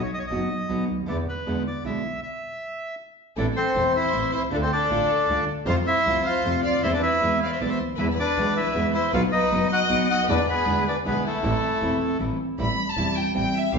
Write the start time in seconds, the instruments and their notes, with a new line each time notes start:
0.03 bandoneon C#5
0.14 bandoneon D#5
0.19 bandoneon C#5
0.27 nylon-string guitar B2, bandoneon D#5
0.31 double bass F#1, nylon-string guitar F#3 B3 D#4 F#4
0.69 double bass B1, nylon-string guitar B2 F#3 B3 D#4 F#4
0.89 double bass D2
1.06 double bass E2, nylon-string guitar D3 A3 B3 E4, bandoneon D5
1.29 bandoneon B4
1.46 double bass E2, nylon-string guitar B2 D3 G#3 B3 E4
1.67 bandoneon D5
1.84 double bass B1, nylon-string guitar B2 D3 G#3 B3 E4, bandoneon E5
2.23 bandoneon E5
3.37 double bass A1, nylon-string guitar E3 A3 C4 E4, bandoneon D4 D5, violin section A4
3.56 bandoneon C4 C5, violin section A4
3.75 double bass E1, nylon-string guitar E3 A3 C4 E4
3.94 bandoneon E4 E5, violin section C5
4.11 double bass A1, nylon-string guitar E3 A3 C4 E4
4.33 double bass C2, bandoneon E4 E5, violin section C5
4.51 double bass D2, nylon-string guitar D3 A3 D4 F4, bandoneon D4 D5, violin section A4
4.62 bandoneon C4 C5, violin section A4
4.70 bandoneon D4 D5, violin section A4
4.90 double bass A1, nylon-string guitar D3 A3 D4 F4
5.28 double bass D2, nylon-string guitar D3 A3 D4 F4
5.66 double bass F2, nylon-string guitar C3 F3 A3 F4, bandoneon F4 F5, violin section C5
5.70 nylon-string guitar C4
5.85 bandoneon E4 E5, violin section C5
6.06 double bass C2, nylon-string guitar C3 F3 A3 C4 F4
6.24 bandoneon F4 F5, violin section C5
6.44 double bass F2, nylon-string guitar C3 F3 A3 C4 F4
6.63 double bass D2, bandoneon F4 F5, violin section D5
6.82 double bass E2, nylon-string guitar E3 A3 C4 E4, bandoneon E4 E5, violin section C5
6.93 bandoneon D4 D5, violin section B4
7.01 bandoneon E4 E5, violin section B4
7.21 double bass E2, nylon-string guitar B2 E3 G#3 B3 E4
7.43 violin section D5, bandoneon F5
7.52 violin section C5, bandoneon E5
7.59 double bass B1, nylon-string guitar B2 E3 G#3 B3 E4, violin section B4, bandoneon D5
7.67 violin section C5, bandoneon E5
7.79 double bass D2
7.97 double bass E2, nylon-string guitar B2 E3 G#3 B3 E4, bandoneon E4 E5, violin section B4
8.16 bandoneon D4 D5, violin section B4
8.37 double bass B1, nylon-string guitar B2 E3 G#3 B3 E4
8.52 violin section B4
8.57 bandoneon E4 E5
8.74 double bass E2, nylon-string guitar B2 E3 G#3 B3 E4
8.94 bandoneon E4 E5, violin section C5
9.12 double bass B1, nylon-string guitar B2 F#3 B3 D#4 F#4, bandoneon F4 F5, violin section B4
9.32 bandoneon D#4 D#5, violin section B4
9.51 double bass F#1, nylon-string guitar B2 F#3 B3 D#4 F#4
9.72 bandoneon F#4 F#5, violin section D#5
9.89 double bass B1, nylon-string guitar B2 F#3 B3 D#4 F#4
10.10 bandoneon F#4 F#5, violin section D#5
10.27 double bass E2, nylon-string guitar D3 A3 B3 E4, bandoneon D4 D5, violin section B4
10.49 bandoneon B3 B4, violin section G#4
10.66 double bass E2, nylon-string guitar B2 D3 G#3 B3 E4
10.87 bandoneon D4 D5, violin section B4
11.05 double bass B1, nylon-string guitar B2 D3 G#3 B3 E4, bandoneon B3 B4, violin section G#4
11.25 bandoneon A3 A4, violin section E4
11.43 double bass A1, nylon-string guitar E3 A3 C4 E4
11.81 double bass E1, nylon-string guitar E3 A3 C4 E4
12.19 double bass A1, nylon-string guitar E3 A3 C4 E4
12.58 double bass A1, nylon-string guitar E3 G3 C4 E4, violin section B5
12.87 violin section A5
12.97 double bass E1, nylon-string guitar E3 G3 C4 E4
13.16 violin section G5
13.34 double bass A1, nylon-string guitar E3 G3 C4 E4, violin section G5
13.55 violin section E5
13.73 double bass B1, nylon-string guitar B2, violin section F5